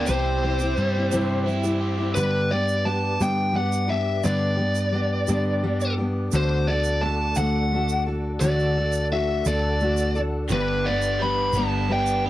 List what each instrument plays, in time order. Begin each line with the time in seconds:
Already playing: overdriven electric guitar G3 G4, tonewheel organ G5
0.06 picked electric bass C2, steel-string acoustic guitar C3 G3 C4 E4 G4, lead electric guitar C5, tonewheel organ C5 E5 E6, shaker
0.44 steel-string acoustic guitar G3 C4 E4 G4
0.59 steel-string acoustic guitar C4 E4 G4, shaker
0.77 picked electric bass G2, overdriven electric guitar G3, shaker
0.96 steel-string acoustic guitar C4 E4 G4
1.12 picked electric bass G2, steel-string acoustic guitar C3 G3 C4 E4 G4, overdriven electric guitar E3, shaker
1.45 steel-string acoustic guitar G3 C4 E4 G4, shaker
1.63 steel-string acoustic guitar C4 E4 G4, shaker
1.80 overdriven electric guitar G4
1.98 steel-string acoustic guitar C4 E4 G4
2.15 steel-string acoustic guitar G2 D3 G3 B3 D4 G4, picked electric bass G2, tonewheel organ G4 B4 D5 D6, lead electric guitar B4, shaker
2.51 steel-string acoustic guitar G3 B3 D4 G4, lead electric guitar D5
2.68 shaker
2.85 steel-string acoustic guitar G3 B3 D4 G4, lead electric guitar A5
3.20 picked electric bass G2, steel-string acoustic guitar G2 D3 G3 B3 D4 G4, lead electric guitar G5, shaker
3.53 steel-string acoustic guitar G3 B3 D4, lead electric guitar F#5
3.57 steel-string acoustic guitar G4
3.72 shaker
3.88 steel-string acoustic guitar G3 B3 D4 G4, lead electric guitar E5
4.23 steel-string acoustic guitar G2 D3 G3 B3 D4 G4, picked electric bass G2, lead electric guitar D5, tonewheel organ A5, shaker
4.57 steel-string acoustic guitar G3 B3 D4 G4
4.75 shaker
4.92 steel-string acoustic guitar G3 B3 D4 G4
5.27 picked electric bass G2, steel-string acoustic guitar G2 D3 G3 B3 D4 G4, shaker
5.64 steel-string acoustic guitar G3 B3 D4 G4
5.81 shaker
5.98 steel-string acoustic guitar G3 B3 D4 G4
6.31 picked electric bass D2, steel-string acoustic guitar D3 A3 D4 F#4 A4, tonewheel organ A4 F#5, shaker
6.36 lead electric guitar C5
6.68 steel-string acoustic guitar F#4 A4, lead electric guitar D5
6.72 steel-string acoustic guitar D4
6.84 shaker
7.01 steel-string acoustic guitar A3 D4 F#4, lead electric guitar A5
7.06 steel-string acoustic guitar A4
7.35 picked electric bass D2, steel-string acoustic guitar D4 F#4 A4, lead electric guitar F#5, shaker
7.40 steel-string acoustic guitar D3 A3
7.72 steel-string acoustic guitar A3 D4 F#4 A4
7.89 shaker
8.06 steel-string acoustic guitar D4 F#4 A4
8.40 picked electric bass D2, steel-string acoustic guitar D3 A3 D4, lead electric guitar D5, tonewheel organ E6, shaker
8.44 steel-string acoustic guitar F#4 A4
8.59 shaker
8.77 steel-string acoustic guitar D4 F#4 A4
8.92 shaker
9.11 steel-string acoustic guitar A3 D4 F#4 A4, lead electric guitar E5
9.45 picked electric bass D2, steel-string acoustic guitar D3 A3 D4 F#4 A4, lead electric guitar D5, shaker
9.80 steel-string acoustic guitar A3 D4 F#4, shaker
9.85 steel-string acoustic guitar A4
9.97 shaker
10.15 steel-string acoustic guitar D4 F#4 A4, shaker
10.49 picked electric bass G1, steel-string acoustic guitar G2 D3 G3 B3, tonewheel organ B4 G5 D6, lead electric guitar B4, shaker
10.53 steel-string acoustic guitar D4 B4
10.84 overdriven electric guitar B3, steel-string acoustic guitar B4, lead electric guitar D5
10.88 steel-string acoustic guitar G3 B3 D4
11.02 shaker
11.22 steel-string acoustic guitar G3 B3 D4 B4, lead electric guitar B5
11.53 picked electric bass G1, lead electric guitar A5, shaker
11.57 steel-string acoustic guitar G2 D3 G3 B3 D4 B4
11.90 steel-string acoustic guitar G3 B3 D4 B4, lead electric guitar G5
12.06 shaker
12.25 steel-string acoustic guitar D4 B4, overdriven electric guitar G4